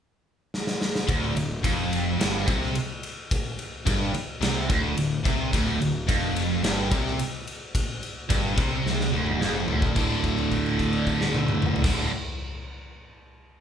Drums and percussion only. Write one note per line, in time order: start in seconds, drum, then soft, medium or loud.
0.54 snare medium
0.67 snare medium
0.81 snare medium
0.95 snare loud
1.09 kick loud
1.09 ride medium
1.37 ride medium
1.64 kick loud
1.64 ride loud
1.93 ride medium
2.21 snare loud
2.21 ride loud
2.48 kick loud
2.48 ride medium
2.62 snare soft
2.75 ride loud
3.03 ride medium
3.31 kick loud
3.31 ride medium
3.59 ride medium
3.87 kick loud
3.87 ride loud
4.14 ride medium
4.42 snare loud
4.42 ride medium
4.70 kick loud
4.70 ride medium
4.97 ride medium
5.25 kick loud
5.25 ride medium
5.53 kick loud
5.53 ride medium
5.82 ride medium
6.09 kick loud
6.09 ride medium
6.36 ride medium
6.64 snare loud
6.64 ride loud
6.92 kick loud
6.92 ride medium
7.06 snare soft
7.19 ride loud
7.47 ride medium
7.75 kick loud
7.75 ride loud
8.03 ride medium
8.30 kick loud
8.30 ride loud
8.58 kick loud
8.58 ride medium
8.86 snare medium
9.00 snare medium
9.26 mid tom medium
9.41 snare medium
9.68 floor tom medium
9.82 kick medium
9.96 kick loud
9.96 crash medium
10.24 kick medium
10.24 crash soft
10.38 crash soft
10.52 kick medium
10.52 crash soft
10.66 crash medium
10.79 kick medium
10.79 crash soft
10.93 crash medium
11.07 kick medium
11.07 crash medium
11.21 snare medium
11.34 high tom medium
11.48 mid tom loud
11.62 mid tom loud
11.76 floor tom loud
11.84 kick loud
11.84 snare loud
11.84 crash loud